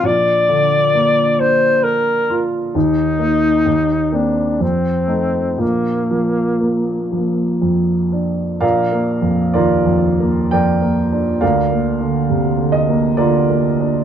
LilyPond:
<<
  \new Staff \with { instrumentName = "Alto saxophone" } { \time 3/4 \key bes \major \tempo 4 = 65 d''4. c''8 bes'8 r8 | ees'4. d'8 c'4 | bes2 r4 | r2. |
r2. | }
  \new Staff \with { instrumentName = "Grand piano" } { \time 3/4 \key bes \major r2. | r2. | r2. | <bes' d'' f''>4 <f' bes' d''>4 <bes' d'' g''>4 |
<bes' d'' f''>4. ees''8 <f' bes' d''>4 | }
  \new Staff \with { instrumentName = "Grand piano" } { \time 3/4 \key bes \major bes,,8 d8 bes8 d'8 bes'8 f'8 | ees,8 <bes ees'>8 ees,8 <bes c'>8 f,8 <a ees'>8 | bes,,8 f8 bes8 f8 f,8 d'8 | \tuplet 3/2 { bes,,8 bes8 f,8 ees,8 f,8 bes8 f,8 bes8 d'8 } |
\tuplet 3/2 { d,8 bes8 d8 c8 d8 bes8 d8 bes8 d'8 } | }
>>